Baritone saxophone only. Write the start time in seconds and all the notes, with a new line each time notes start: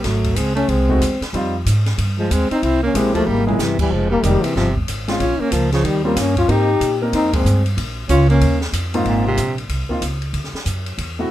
0.05 F#3
0.36 G#3
0.55 A3
0.69 G#3
2.18 F3
2.31 G#3
2.50 C4
2.63 C4
2.83 A#3
2.95 G#3
3.14 F3
3.26 G3
3.46 A#2
3.59 C3
3.79 E3
3.91 F3
4.10 G3
4.24 D#3
4.43 C3
4.56 C3
5.19 C#4
5.40 A#3
5.52 F3
5.72 C#3
5.84 D#3
6.04 G3
6.17 A#3
6.36 C#4
6.49 D#4
7.13 C4
7.33 G#3
8.09 C#4
8.29 A#3
9.06 A#2
9.27 C3